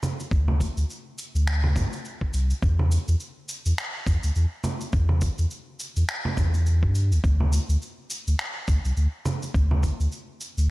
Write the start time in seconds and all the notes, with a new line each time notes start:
0.03 low conga, cabasa
0.20 cabasa
0.31 D2, kick, cabasa
0.48 low conga
0.60 kick, cabasa
0.77 D2, cabasa
0.90 cabasa
1.18 cabasa
1.35 D2, cabasa
1.47 finger snap, cabasa
1.64 low conga
1.76 G2, kick, low conga, cabasa
1.93 cabasa
2.05 cabasa
2.21 kick
2.33 C2, cabasa
2.50 cabasa
2.62 E2, kick, cabasa
2.79 low conga
2.91 cabasa
3.08 E2, cabasa
3.20 cabasa
3.49 cabasa
3.66 E2, cabasa
3.78 finger snap, cabasa
4.07 E2, kick, cabasa
4.23 D2, cabasa
4.35 E2, cabasa
4.64 low conga, cabasa
4.81 cabasa
4.93 E2, kick, cabasa
5.09 low conga
5.21 kick, cabasa
5.38 E2, cabasa
5.51 cabasa
5.80 cabasa
5.96 E2, cabasa
6.09 finger snap, cabasa
6.25 low conga
6.37 E2, kick, low conga, cabasa
6.54 cabasa
6.66 cabasa
6.83 G2, kick
6.95 cabasa
7.11 D2, cabasa
7.24 D2, kick, cabasa
7.40 low conga
7.53 cabasa
7.69 D2, cabasa
7.82 cabasa
8.10 cabasa
8.27 D2, cabasa
8.39 finger snap, cabasa
8.68 D2, kick, cabasa
8.85 C2, cabasa
8.97 D2, cabasa
9.26 low conga, cabasa
9.42 cabasa
9.54 D2, kick, cabasa
9.71 low conga
9.83 kick, cabasa
10.00 D2, cabasa
10.12 cabasa
10.41 cabasa
10.57 D2, cabasa